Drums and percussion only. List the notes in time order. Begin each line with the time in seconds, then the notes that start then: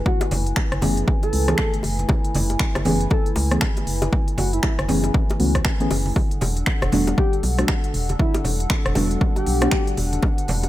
0.06 kick, high conga
0.21 closed hi-hat, high bongo
0.31 open hi-hat, low conga
0.46 closed hi-hat
0.56 finger snap, kick, high bongo
0.72 cross-stick, closed hi-hat
0.81 open hi-hat, high bongo, high conga, low conga
0.97 closed hi-hat
1.08 kick
1.23 closed hi-hat, high bongo
1.33 open hi-hat
1.48 cross-stick, closed hi-hat, high bongo
1.58 finger snap, kick
1.74 closed hi-hat
1.83 open hi-hat, high bongo
1.99 closed hi-hat, high conga
2.09 kick, high bongo, high conga
2.25 closed hi-hat
2.35 open hi-hat, high conga, low conga
2.50 closed hi-hat, high bongo
2.59 finger snap, kick
2.75 cross-stick, closed hi-hat, high bongo
2.85 open hi-hat, high conga, low conga
3.01 closed hi-hat
3.11 kick, high bongo
3.26 closed hi-hat
3.36 open hi-hat, high bongo
3.51 cross-stick, closed hi-hat
3.61 finger snap, kick
3.77 closed hi-hat, high bongo
3.87 open hi-hat
4.02 closed hi-hat, high bongo, high conga
4.12 kick, high conga
4.28 closed hi-hat
4.38 open hi-hat, high bongo, low conga
4.53 closed hi-hat
4.63 finger snap, kick, high bongo
4.79 cross-stick, closed hi-hat
4.88 open hi-hat, high conga, low conga
5.04 closed hi-hat, high bongo
5.14 kick
5.30 closed hi-hat, high bongo
5.40 open hi-hat
5.55 kick, cross-stick, closed hi-hat
5.65 finger snap, kick, high bongo
5.80 closed hi-hat
5.91 open hi-hat, high bongo
6.06 open hi-hat, high conga
6.16 kick, high bongo, high conga
6.31 closed hi-hat
6.41 open hi-hat, high bongo, high conga, low conga
6.57 closed hi-hat
6.66 finger snap, kick
6.82 cross-stick, closed hi-hat, high bongo
6.92 open hi-hat, high conga, low conga
7.07 closed hi-hat, high bongo
7.18 kick
7.33 closed hi-hat
7.43 open hi-hat, high bongo
7.59 cross-stick, closed hi-hat
7.68 finger snap, kick, high bongo
7.84 closed hi-hat
7.94 open hi-hat
8.09 closed hi-hat, high bongo, high conga
8.19 kick, high conga
8.34 closed hi-hat, high bongo
8.44 open hi-hat, low conga
8.60 closed hi-hat
8.70 finger snap, kick, high bongo
8.86 cross-stick, closed hi-hat
8.95 open hi-hat, high bongo, high conga, low conga
9.11 closed hi-hat
9.21 kick
9.36 closed hi-hat, high bongo
9.47 open hi-hat
9.62 cross-stick, closed hi-hat, high bongo
9.71 finger snap, kick
9.87 closed hi-hat
9.97 open hi-hat, high bongo
10.13 closed hi-hat, high conga
10.23 kick, high bongo, high conga
10.38 closed hi-hat
10.48 open hi-hat, high conga, low conga
10.63 closed hi-hat, high bongo